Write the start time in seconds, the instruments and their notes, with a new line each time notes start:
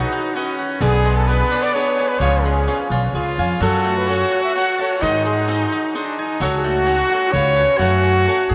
Already playing: trumpet D#4 F#4, cavaquinho F#4 B4 D#5 F#5
0.12 harpsichord D#4
0.35 trumpet C#4, cavaquinho F#4 B4 D#5 F#5
0.59 harpsichord F#5
0.81 upright bass B1, harpsichord D3, trumpet B3 G#4, cavaquinho D4 G#4 B4 D5
1.06 harpsichord G#3
1.16 trumpet A4
1.27 harpsichord B3, cavaquinho D4 G#4 B4 D5, trumpet B4
1.52 harpsichord D4, cavaquinho G#4 B4 D5
1.63 trumpet D5
1.74 cavaquinho D4 G#4 B4 D5, trumpet C#5
1.99 cavaquinho G#4 B4 D5, harpsichord G#5
2.09 trumpet B4
2.19 upright bass C#2, harpsichord F3, trumpet C#4 C#5, cavaquinho F4 G#4 C#5 F5
2.43 harpsichord G#3, trumpet G#4
2.68 harpsichord C#4, cavaquinho F4 G#4 C#5 F5
2.90 upright bass B1, harpsichord F4, cavaquinho G#4 C#5 F5
3.13 upright bass C#2, trumpet F4, cavaquinho F4 G#4 C#5 F5
3.38 upright bass F2, cavaquinho G#4 C#5 F5, harpsichord G#5
3.60 upright bass F#2, harpsichord F#3, trumpet F#4 A4, cavaquinho F#4 A4 C#5 F#5
3.85 harpsichord A3
3.98 trumpet B4
4.07 harpsichord C#4, cavaquinho F#4 A4 C#5, trumpet C#5
4.11 cavaquinho F#5
4.31 harpsichord F#4
4.44 trumpet E5
4.55 cavaquinho F#4 A4 C#5 F#5, trumpet F#5
4.78 cavaquinho A4 C#5 F#5, trumpet C#5, harpsichord A5
5.01 upright bass G#2, harpsichord D#3, cavaquinho D#4 G#4 C5 D#5, trumpet D#4 D#5
5.25 harpsichord G#3, trumpet G#4
5.48 harpsichord C4, cavaquinho D#4 G#4 C5 D#5
5.72 harpsichord D#4
5.91 trumpet D#4, cavaquinho D#4 G#4
5.95 trumpet D4, cavaquinho C5 D#5
6.19 trumpet D#4, harpsichord G#5
6.40 upright bass C#2, harpsichord F#3, cavaquinho F#4 A4 C#5 F#5, trumpet F#4
6.57 trumpet G#4
6.64 harpsichord A3, trumpet F#4
6.87 harpsichord C#4, cavaquinho F#4 A4 C#5 F#5
7.11 harpsichord F#4, cavaquinho A4 C#5 F#5
7.32 upright bass C#2, trumpet C#4 C#5, cavaquinho G#4 B4 C#5 F5
7.57 harpsichord B4
7.78 upright bass F#2, harpsichord A3, trumpet A3 F#4, cavaquinho A4 C#5 F#5 G#5
8.04 harpsichord C#4
8.26 harpsichord F#4, cavaquinho A4 C#5 F#5 G#5
8.49 upright bass A2, harpsichord G#4